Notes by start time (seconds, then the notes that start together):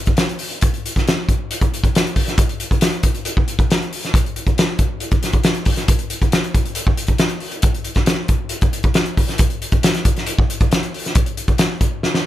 0.06 kick, closed hi-hat
0.17 snare, closed hi-hat
0.29 closed hi-hat
0.39 open hi-hat
0.51 closed hi-hat
0.61 kick, closed hi-hat
0.74 closed hi-hat
0.86 closed hi-hat
0.96 kick, snare, closed hi-hat
1.07 snare, closed hi-hat
1.29 kick, closed hi-hat
1.51 closed hi-hat
1.61 kick, closed hi-hat
1.74 closed hi-hat
1.84 kick, closed hi-hat
1.95 snare, closed hi-hat
2.07 closed hi-hat
2.16 kick, open hi-hat
2.27 snare, closed hi-hat
2.38 kick, closed hi-hat
2.49 closed hi-hat
2.60 closed hi-hat
2.71 kick, closed hi-hat
2.81 snare, closed hi-hat
2.92 closed hi-hat
3.03 kick, closed hi-hat
3.15 closed hi-hat
3.25 closed hi-hat
3.37 kick
3.48 closed hi-hat
3.59 kick, closed hi-hat
3.70 snare, closed hi-hat
3.82 closed hi-hat
3.93 open hi-hat
4.04 snare, closed hi-hat
4.14 kick, closed hi-hat
4.26 closed hi-hat
4.36 closed hi-hat
4.47 kick, closed hi-hat
4.58 snare, closed hi-hat
4.79 kick, closed hi-hat
5.00 closed hi-hat
5.11 kick, closed hi-hat
5.23 snare, closed hi-hat
5.33 kick, closed hi-hat
5.43 snare, closed hi-hat
5.54 closed hi-hat
5.65 kick, open hi-hat
5.76 snare, closed hi-hat
5.88 kick, closed hi-hat
5.99 closed hi-hat
6.10 closed hi-hat
6.22 kick, closed hi-hat
6.32 snare, closed hi-hat
6.44 closed hi-hat
6.55 kick, closed hi-hat
6.66 closed hi-hat
6.75 closed hi-hat
6.87 kick
6.97 closed hi-hat
7.07 kick, closed hi-hat
7.18 snare, closed hi-hat
7.29 closed hi-hat
7.40 open hi-hat
7.52 closed hi-hat
7.62 kick, closed hi-hat
7.75 closed hi-hat
7.84 closed hi-hat
7.95 kick, snare, closed hi-hat
8.06 snare, closed hi-hat
8.28 kick, closed hi-hat
8.49 closed hi-hat
8.61 kick, closed hi-hat
8.73 closed hi-hat
8.83 kick, closed hi-hat
8.94 snare, closed hi-hat
9.06 closed hi-hat
9.17 kick, open hi-hat
9.28 snare, closed hi-hat
9.38 kick, closed hi-hat
9.50 closed hi-hat
9.62 closed hi-hat
9.72 kick, closed hi-hat
9.83 snare, closed hi-hat
9.94 snare, closed hi-hat
10.05 kick, closed hi-hat
10.17 snare, closed hi-hat
10.26 closed hi-hat
10.39 kick
10.50 closed hi-hat
10.61 kick, closed hi-hat
10.72 snare, closed hi-hat
10.83 closed hi-hat
10.94 open hi-hat
11.05 snare, closed hi-hat
11.15 kick, closed hi-hat
11.26 closed hi-hat
11.37 closed hi-hat
11.48 kick, closed hi-hat
11.58 snare, closed hi-hat
11.81 kick, closed hi-hat
12.03 snare
12.14 snare